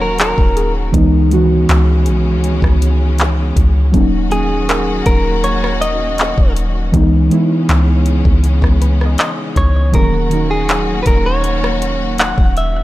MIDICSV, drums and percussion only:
0, 0, Header, 1, 2, 480
1, 0, Start_track
1, 0, Tempo, 750000
1, 600, Time_signature, 4, 2, 24, 8
1, 8213, End_track
2, 0, Start_track
2, 0, Title_t, "Drums"
2, 118, Note_on_c, 9, 42, 75
2, 131, Note_on_c, 9, 39, 105
2, 182, Note_off_c, 9, 42, 0
2, 195, Note_off_c, 9, 39, 0
2, 243, Note_on_c, 9, 36, 96
2, 307, Note_off_c, 9, 36, 0
2, 364, Note_on_c, 9, 42, 65
2, 428, Note_off_c, 9, 42, 0
2, 601, Note_on_c, 9, 36, 112
2, 602, Note_on_c, 9, 42, 70
2, 665, Note_off_c, 9, 36, 0
2, 666, Note_off_c, 9, 42, 0
2, 841, Note_on_c, 9, 42, 66
2, 905, Note_off_c, 9, 42, 0
2, 1082, Note_on_c, 9, 42, 74
2, 1089, Note_on_c, 9, 39, 106
2, 1146, Note_off_c, 9, 42, 0
2, 1153, Note_off_c, 9, 39, 0
2, 1318, Note_on_c, 9, 42, 70
2, 1382, Note_off_c, 9, 42, 0
2, 1561, Note_on_c, 9, 42, 73
2, 1625, Note_off_c, 9, 42, 0
2, 1679, Note_on_c, 9, 36, 87
2, 1689, Note_on_c, 9, 37, 94
2, 1743, Note_off_c, 9, 36, 0
2, 1753, Note_off_c, 9, 37, 0
2, 1805, Note_on_c, 9, 42, 75
2, 1869, Note_off_c, 9, 42, 0
2, 2038, Note_on_c, 9, 42, 79
2, 2051, Note_on_c, 9, 39, 110
2, 2102, Note_off_c, 9, 42, 0
2, 2115, Note_off_c, 9, 39, 0
2, 2281, Note_on_c, 9, 36, 79
2, 2283, Note_on_c, 9, 42, 66
2, 2345, Note_off_c, 9, 36, 0
2, 2347, Note_off_c, 9, 42, 0
2, 2521, Note_on_c, 9, 36, 118
2, 2521, Note_on_c, 9, 42, 68
2, 2585, Note_off_c, 9, 36, 0
2, 2585, Note_off_c, 9, 42, 0
2, 2761, Note_on_c, 9, 42, 64
2, 2825, Note_off_c, 9, 42, 0
2, 3001, Note_on_c, 9, 42, 78
2, 3009, Note_on_c, 9, 39, 107
2, 3065, Note_off_c, 9, 42, 0
2, 3073, Note_off_c, 9, 39, 0
2, 3237, Note_on_c, 9, 42, 67
2, 3240, Note_on_c, 9, 36, 94
2, 3301, Note_off_c, 9, 42, 0
2, 3304, Note_off_c, 9, 36, 0
2, 3480, Note_on_c, 9, 42, 78
2, 3544, Note_off_c, 9, 42, 0
2, 3609, Note_on_c, 9, 37, 89
2, 3673, Note_off_c, 9, 37, 0
2, 3724, Note_on_c, 9, 42, 75
2, 3788, Note_off_c, 9, 42, 0
2, 3956, Note_on_c, 9, 42, 75
2, 3969, Note_on_c, 9, 39, 107
2, 4020, Note_off_c, 9, 42, 0
2, 4033, Note_off_c, 9, 39, 0
2, 4082, Note_on_c, 9, 36, 99
2, 4146, Note_off_c, 9, 36, 0
2, 4202, Note_on_c, 9, 42, 67
2, 4266, Note_off_c, 9, 42, 0
2, 4440, Note_on_c, 9, 36, 109
2, 4440, Note_on_c, 9, 42, 70
2, 4504, Note_off_c, 9, 36, 0
2, 4504, Note_off_c, 9, 42, 0
2, 4681, Note_on_c, 9, 42, 65
2, 4745, Note_off_c, 9, 42, 0
2, 4921, Note_on_c, 9, 42, 70
2, 4929, Note_on_c, 9, 39, 104
2, 4985, Note_off_c, 9, 42, 0
2, 4993, Note_off_c, 9, 39, 0
2, 5157, Note_on_c, 9, 42, 66
2, 5221, Note_off_c, 9, 42, 0
2, 5281, Note_on_c, 9, 36, 104
2, 5345, Note_off_c, 9, 36, 0
2, 5400, Note_on_c, 9, 42, 78
2, 5464, Note_off_c, 9, 42, 0
2, 5518, Note_on_c, 9, 36, 86
2, 5528, Note_on_c, 9, 37, 94
2, 5582, Note_off_c, 9, 36, 0
2, 5592, Note_off_c, 9, 37, 0
2, 5643, Note_on_c, 9, 42, 73
2, 5707, Note_off_c, 9, 42, 0
2, 5768, Note_on_c, 9, 37, 69
2, 5832, Note_off_c, 9, 37, 0
2, 5875, Note_on_c, 9, 42, 77
2, 5888, Note_on_c, 9, 39, 110
2, 5939, Note_off_c, 9, 42, 0
2, 5952, Note_off_c, 9, 39, 0
2, 6120, Note_on_c, 9, 36, 80
2, 6120, Note_on_c, 9, 42, 67
2, 6184, Note_off_c, 9, 36, 0
2, 6184, Note_off_c, 9, 42, 0
2, 6359, Note_on_c, 9, 36, 115
2, 6359, Note_on_c, 9, 42, 68
2, 6423, Note_off_c, 9, 36, 0
2, 6423, Note_off_c, 9, 42, 0
2, 6600, Note_on_c, 9, 42, 63
2, 6664, Note_off_c, 9, 42, 0
2, 6840, Note_on_c, 9, 42, 75
2, 6848, Note_on_c, 9, 39, 116
2, 6904, Note_off_c, 9, 42, 0
2, 6912, Note_off_c, 9, 39, 0
2, 7077, Note_on_c, 9, 42, 66
2, 7080, Note_on_c, 9, 36, 94
2, 7141, Note_off_c, 9, 42, 0
2, 7144, Note_off_c, 9, 36, 0
2, 7321, Note_on_c, 9, 42, 77
2, 7385, Note_off_c, 9, 42, 0
2, 7450, Note_on_c, 9, 37, 100
2, 7514, Note_off_c, 9, 37, 0
2, 7564, Note_on_c, 9, 42, 74
2, 7628, Note_off_c, 9, 42, 0
2, 7797, Note_on_c, 9, 42, 75
2, 7810, Note_on_c, 9, 39, 106
2, 7861, Note_off_c, 9, 42, 0
2, 7874, Note_off_c, 9, 39, 0
2, 7922, Note_on_c, 9, 36, 101
2, 7986, Note_off_c, 9, 36, 0
2, 8043, Note_on_c, 9, 42, 66
2, 8107, Note_off_c, 9, 42, 0
2, 8213, End_track
0, 0, End_of_file